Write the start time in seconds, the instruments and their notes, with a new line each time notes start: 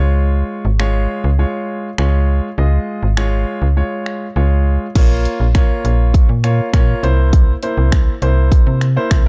Already playing: fm bass C#2, grand piano G#3 F4 C#5
0.65 fm bass G#1
0.80 grand piano G#3 F4 C#5, finger snap
1.24 fm bass C#2
1.39 grand piano G#3 F4 C#5
1.98 fm bass C#2, grand piano G#3 F4 C#5, finger snap
2.58 fm bass C#2, grand piano G#3 F4 D#5
3.03 fm bass G#1
3.17 grand piano G#3 F4 C#5, finger snap
3.62 fm bass C#2
3.77 grand piano G#3 F4 C#5
4.06 finger snap
4.36 fm bass C#2, grand piano G#3 F4 C#5
4.95 fm bass A#1, grand piano A#3 F4 C#5, kick, closed hi-hat, crash
5.25 closed hi-hat
5.40 fm bass A#1
5.55 grand piano A#3 F4 C#5, finger snap, kick, closed hi-hat
5.85 fm bass A#1, closed hi-hat
6.14 kick, closed hi-hat
6.29 fm bass A#2
6.44 grand piano A#3 F4 C#5, finger snap, closed hi-hat
6.73 fm bass A#2, grand piano A#3 F4 C#5, finger snap, kick, closed hi-hat
7.03 fm bass C2, grand piano A#3 E4 C5, closed hi-hat
7.33 kick, closed hi-hat
7.63 grand piano A#3 E4 C5, closed hi-hat
7.77 fm bass C2
7.92 finger snap, kick, closed hi-hat
8.22 fm bass C2, grand piano A#3 E4 C5, closed hi-hat
8.52 kick, closed hi-hat
8.67 fm bass C3
8.81 finger snap, closed hi-hat
8.96 grand piano A#3 E4 C5
9.11 fm bass C2, finger snap, kick, closed hi-hat